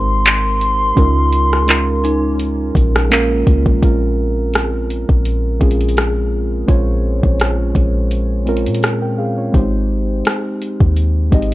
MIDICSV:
0, 0, Header, 1, 6, 480
1, 0, Start_track
1, 0, Tempo, 714286
1, 653, Time_signature, 4, 2, 24, 8
1, 7756, End_track
2, 0, Start_track
2, 0, Title_t, "Soft synth lead"
2, 0, Program_c, 0, 80
2, 0, Note_on_c, 0, 84, 127
2, 2101, Note_off_c, 0, 84, 0
2, 7756, End_track
3, 0, Start_track
3, 0, Title_t, "Synth keys"
3, 0, Program_c, 1, 88
3, 0, Control_c, 1, 64, 127
3, 0, Note_on_c, 1, 56, 74
3, 0, Note_on_c, 1, 60, 70
3, 0, Note_on_c, 1, 63, 66
3, 0, Note_on_c, 1, 67, 67
3, 0, Note_on_c, 1, 70, 82
3, 0, Note_on_c, 1, 72, 102
3, 641, Note_off_c, 1, 56, 0
3, 641, Note_on_c, 1, 56, 88
3, 647, Note_on_c, 1, 61, 89
3, 652, Note_off_c, 1, 63, 0
3, 652, Note_on_c, 1, 63, 85
3, 657, Note_on_c, 1, 65, 86
3, 662, Note_off_c, 1, 70, 0
3, 662, Control_c, 1, 64, 0
3, 662, Note_on_c, 1, 70, 99
3, 665, Note_off_c, 1, 72, 0
3, 667, Note_off_c, 1, 60, 0
3, 667, Note_off_c, 1, 67, 0
3, 785, Control_c, 1, 64, 127
3, 1000, Note_off_c, 1, 56, 0
3, 1003, Note_off_c, 1, 61, 0
3, 1005, Note_off_c, 1, 63, 0
3, 1008, Note_off_c, 1, 65, 0
3, 1011, Note_off_c, 1, 70, 0
3, 1119, Note_on_c, 1, 56, 91
3, 1125, Note_on_c, 1, 61, 75
3, 1131, Note_on_c, 1, 63, 78
3, 1136, Note_on_c, 1, 65, 79
3, 1141, Note_on_c, 1, 70, 95
3, 1818, Note_off_c, 1, 56, 0
3, 1821, Note_off_c, 1, 61, 0
3, 1824, Note_off_c, 1, 63, 0
3, 1826, Note_off_c, 1, 65, 0
3, 1829, Note_off_c, 1, 70, 0
3, 2079, Note_on_c, 1, 56, 99
3, 2085, Note_on_c, 1, 58, 90
3, 2090, Note_on_c, 1, 61, 92
3, 2096, Note_on_c, 1, 65, 88
3, 2101, Control_c, 1, 64, 0
3, 2101, Note_on_c, 1, 70, 114
3, 2216, Control_c, 1, 64, 127
3, 2477, Note_off_c, 1, 56, 0
3, 2481, Note_off_c, 1, 58, 0
3, 2483, Note_off_c, 1, 61, 0
3, 2486, Note_off_c, 1, 65, 0
3, 2488, Note_off_c, 1, 70, 0
3, 2563, Note_on_c, 1, 56, 82
3, 2569, Note_on_c, 1, 60, 75
3, 2573, Note_on_c, 1, 61, 76
3, 2578, Note_on_c, 1, 65, 77
3, 2580, Control_c, 1, 64, 0
3, 2585, Note_on_c, 1, 70, 94
3, 2694, Control_c, 1, 64, 127
3, 3260, Note_off_c, 1, 56, 0
3, 3263, Note_off_c, 1, 60, 0
3, 3265, Note_off_c, 1, 61, 0
3, 3267, Note_off_c, 1, 65, 0
3, 3271, Note_off_c, 1, 70, 0
3, 3759, Note_on_c, 1, 56, 87
3, 3765, Note_on_c, 1, 60, 74
3, 3771, Note_on_c, 1, 61, 77
3, 3777, Note_on_c, 1, 65, 73
3, 3781, Note_on_c, 1, 68, 91
3, 4286, Note_off_c, 1, 56, 0
3, 4289, Note_off_c, 1, 60, 0
3, 4292, Note_off_c, 1, 61, 0
3, 4295, Note_off_c, 1, 65, 0
3, 4297, Note_off_c, 1, 68, 0
3, 4480, Note_on_c, 1, 56, 90
3, 4486, Note_on_c, 1, 72, 78
3, 4490, Note_on_c, 1, 61, 81
3, 4496, Note_on_c, 1, 65, 83
3, 4502, Note_on_c, 1, 73, 98
3, 5178, Note_off_c, 1, 56, 0
3, 5181, Note_off_c, 1, 72, 0
3, 5183, Note_off_c, 1, 61, 0
3, 5186, Note_off_c, 1, 65, 0
3, 5189, Note_off_c, 1, 73, 0
3, 5680, Note_on_c, 1, 56, 83
3, 5686, Note_on_c, 1, 60, 72
3, 5692, Note_on_c, 1, 61, 77
3, 5698, Note_on_c, 1, 65, 77
3, 5703, Note_on_c, 1, 70, 92
3, 5935, Note_off_c, 1, 65, 0
3, 5938, Note_off_c, 1, 70, 0
3, 6061, Note_on_c, 1, 79, 63
3, 6064, Note_on_c, 1, 70, 57
3, 6166, Note_off_c, 1, 79, 0
3, 6168, Note_off_c, 1, 70, 0
3, 6169, Note_on_c, 1, 77, 69
3, 6174, Note_on_c, 1, 68, 60
3, 6207, Note_off_c, 1, 56, 0
3, 6210, Note_off_c, 1, 60, 0
3, 6212, Note_off_c, 1, 61, 0
3, 6294, Note_off_c, 1, 77, 0
3, 6297, Note_off_c, 1, 68, 0
3, 6302, Note_on_c, 1, 73, 59
3, 6305, Note_on_c, 1, 65, 54
3, 6400, Note_on_c, 1, 56, 88
3, 6406, Note_on_c, 1, 60, 75
3, 6412, Note_on_c, 1, 63, 78
3, 6417, Note_on_c, 1, 67, 84
3, 6421, Control_c, 1, 64, 0
3, 6422, Note_on_c, 1, 72, 95
3, 6530, Note_off_c, 1, 73, 0
3, 6531, Note_off_c, 1, 65, 0
3, 6548, Control_c, 1, 64, 127
3, 7098, Note_off_c, 1, 56, 0
3, 7101, Note_off_c, 1, 60, 0
3, 7104, Note_off_c, 1, 63, 0
3, 7107, Note_off_c, 1, 67, 0
3, 7109, Note_off_c, 1, 72, 0
3, 7599, Note_on_c, 1, 56, 81
3, 7605, Note_on_c, 1, 60, 80
3, 7611, Note_on_c, 1, 63, 80
3, 7616, Note_on_c, 1, 67, 75
3, 7622, Note_on_c, 1, 75, 97
3, 7756, Note_off_c, 1, 56, 0
3, 7756, Note_off_c, 1, 60, 0
3, 7756, Note_off_c, 1, 63, 0
3, 7756, Note_off_c, 1, 67, 0
3, 7756, Note_off_c, 1, 75, 0
3, 7756, End_track
4, 0, Start_track
4, 0, Title_t, "Synth bell"
4, 0, Program_c, 2, 98
4, 0, Note_on_c, 2, 60, 75
4, 125, Note_off_c, 2, 60, 0
4, 1370, Note_on_c, 2, 63, 69
4, 2288, Note_off_c, 2, 63, 0
4, 7756, End_track
5, 0, Start_track
5, 0, Title_t, "808-style bass"
5, 0, Program_c, 3, 38
5, 0, Note_on_c, 3, 32, 115
5, 625, Note_off_c, 3, 32, 0
5, 653, Note_on_c, 3, 37, 110
5, 1826, Note_off_c, 3, 37, 0
5, 1850, Note_on_c, 3, 34, 113
5, 2312, Note_off_c, 3, 34, 0
5, 2332, Note_on_c, 3, 37, 97
5, 2457, Note_off_c, 3, 37, 0
5, 2460, Note_on_c, 3, 34, 102
5, 2567, Note_off_c, 3, 34, 0
5, 2573, Note_on_c, 3, 34, 102
5, 3395, Note_off_c, 3, 34, 0
5, 3423, Note_on_c, 3, 34, 96
5, 3759, Note_off_c, 3, 34, 0
5, 3770, Note_on_c, 3, 34, 108
5, 4464, Note_off_c, 3, 34, 0
5, 4494, Note_on_c, 3, 34, 107
5, 4848, Note_off_c, 3, 34, 0
5, 4862, Note_on_c, 3, 34, 92
5, 5198, Note_off_c, 3, 34, 0
5, 5209, Note_on_c, 3, 34, 104
5, 5824, Note_on_c, 3, 46, 101
5, 5835, Note_off_c, 3, 34, 0
5, 6387, Note_off_c, 3, 46, 0
5, 6413, Note_on_c, 3, 32, 106
5, 6873, Note_off_c, 3, 32, 0
5, 7262, Note_on_c, 3, 39, 98
5, 7598, Note_off_c, 3, 39, 0
5, 7611, Note_on_c, 3, 32, 109
5, 7756, Note_off_c, 3, 32, 0
5, 7756, End_track
6, 0, Start_track
6, 0, Title_t, "Drums"
6, 171, Note_on_c, 9, 42, 72
6, 178, Note_on_c, 9, 39, 117
6, 238, Note_off_c, 9, 42, 0
6, 245, Note_off_c, 9, 39, 0
6, 411, Note_on_c, 9, 42, 60
6, 478, Note_off_c, 9, 42, 0
6, 652, Note_on_c, 9, 36, 113
6, 652, Note_on_c, 9, 42, 69
6, 719, Note_off_c, 9, 36, 0
6, 720, Note_off_c, 9, 42, 0
6, 890, Note_on_c, 9, 42, 63
6, 957, Note_off_c, 9, 42, 0
6, 1028, Note_on_c, 9, 37, 68
6, 1095, Note_off_c, 9, 37, 0
6, 1129, Note_on_c, 9, 42, 65
6, 1141, Note_on_c, 9, 39, 125
6, 1196, Note_off_c, 9, 42, 0
6, 1208, Note_off_c, 9, 39, 0
6, 1375, Note_on_c, 9, 42, 61
6, 1442, Note_off_c, 9, 42, 0
6, 1610, Note_on_c, 9, 42, 71
6, 1677, Note_off_c, 9, 42, 0
6, 1849, Note_on_c, 9, 36, 100
6, 1858, Note_on_c, 9, 42, 74
6, 1916, Note_off_c, 9, 36, 0
6, 1925, Note_off_c, 9, 42, 0
6, 1987, Note_on_c, 9, 37, 102
6, 2054, Note_off_c, 9, 37, 0
6, 2093, Note_on_c, 9, 42, 74
6, 2100, Note_on_c, 9, 39, 119
6, 2160, Note_off_c, 9, 42, 0
6, 2167, Note_off_c, 9, 39, 0
6, 2331, Note_on_c, 9, 36, 85
6, 2331, Note_on_c, 9, 42, 61
6, 2398, Note_off_c, 9, 36, 0
6, 2398, Note_off_c, 9, 42, 0
6, 2459, Note_on_c, 9, 36, 103
6, 2526, Note_off_c, 9, 36, 0
6, 2571, Note_on_c, 9, 36, 100
6, 2572, Note_on_c, 9, 42, 66
6, 2638, Note_off_c, 9, 36, 0
6, 2639, Note_off_c, 9, 42, 0
6, 3049, Note_on_c, 9, 42, 59
6, 3060, Note_on_c, 9, 37, 118
6, 3116, Note_off_c, 9, 42, 0
6, 3127, Note_off_c, 9, 37, 0
6, 3294, Note_on_c, 9, 42, 52
6, 3361, Note_off_c, 9, 42, 0
6, 3421, Note_on_c, 9, 36, 96
6, 3488, Note_off_c, 9, 36, 0
6, 3530, Note_on_c, 9, 42, 69
6, 3598, Note_off_c, 9, 42, 0
6, 3769, Note_on_c, 9, 36, 93
6, 3772, Note_on_c, 9, 42, 42
6, 3836, Note_off_c, 9, 36, 0
6, 3836, Note_off_c, 9, 42, 0
6, 3836, Note_on_c, 9, 42, 52
6, 3902, Note_off_c, 9, 42, 0
6, 3902, Note_on_c, 9, 42, 58
6, 3956, Note_off_c, 9, 42, 0
6, 3956, Note_on_c, 9, 42, 68
6, 4012, Note_off_c, 9, 42, 0
6, 4012, Note_on_c, 9, 42, 65
6, 4019, Note_on_c, 9, 37, 107
6, 4079, Note_off_c, 9, 42, 0
6, 4086, Note_off_c, 9, 37, 0
6, 4492, Note_on_c, 9, 36, 100
6, 4492, Note_on_c, 9, 42, 61
6, 4559, Note_off_c, 9, 36, 0
6, 4559, Note_off_c, 9, 42, 0
6, 4861, Note_on_c, 9, 36, 87
6, 4928, Note_off_c, 9, 36, 0
6, 4970, Note_on_c, 9, 42, 61
6, 4982, Note_on_c, 9, 37, 116
6, 5037, Note_off_c, 9, 42, 0
6, 5049, Note_off_c, 9, 37, 0
6, 5208, Note_on_c, 9, 36, 92
6, 5214, Note_on_c, 9, 42, 51
6, 5276, Note_off_c, 9, 36, 0
6, 5281, Note_off_c, 9, 42, 0
6, 5450, Note_on_c, 9, 42, 68
6, 5517, Note_off_c, 9, 42, 0
6, 5692, Note_on_c, 9, 42, 42
6, 5757, Note_off_c, 9, 42, 0
6, 5757, Note_on_c, 9, 42, 51
6, 5822, Note_off_c, 9, 42, 0
6, 5822, Note_on_c, 9, 42, 60
6, 5877, Note_off_c, 9, 42, 0
6, 5877, Note_on_c, 9, 42, 67
6, 5932, Note_off_c, 9, 42, 0
6, 5932, Note_on_c, 9, 42, 64
6, 5939, Note_on_c, 9, 37, 111
6, 6000, Note_off_c, 9, 42, 0
6, 6007, Note_off_c, 9, 37, 0
6, 6412, Note_on_c, 9, 36, 102
6, 6413, Note_on_c, 9, 42, 61
6, 6479, Note_off_c, 9, 36, 0
6, 6480, Note_off_c, 9, 42, 0
6, 6889, Note_on_c, 9, 42, 62
6, 6901, Note_on_c, 9, 37, 118
6, 6956, Note_off_c, 9, 42, 0
6, 6968, Note_off_c, 9, 37, 0
6, 7134, Note_on_c, 9, 42, 51
6, 7201, Note_off_c, 9, 42, 0
6, 7261, Note_on_c, 9, 36, 96
6, 7328, Note_off_c, 9, 36, 0
6, 7369, Note_on_c, 9, 42, 69
6, 7436, Note_off_c, 9, 42, 0
6, 7608, Note_on_c, 9, 36, 90
6, 7611, Note_on_c, 9, 42, 41
6, 7676, Note_off_c, 9, 36, 0
6, 7677, Note_off_c, 9, 42, 0
6, 7677, Note_on_c, 9, 42, 51
6, 7744, Note_off_c, 9, 42, 0
6, 7756, End_track
0, 0, End_of_file